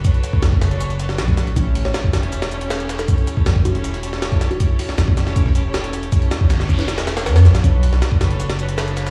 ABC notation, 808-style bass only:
X:1
M:4/4
L:1/8
Q:1/4=158
K:Amix
V:1 name="808-style bass" clef=bass
z2 A,,, F,,,3 B,,, A,,, | A,,,2 z E,,,4- E,,, | z2 G,,, E,,,4- E,,, | z2 G,,, E,,,4- E,,, |
z2 G,,, E,,,3 F,, A,,, | B,,,2 z F,,,4- F,,, |]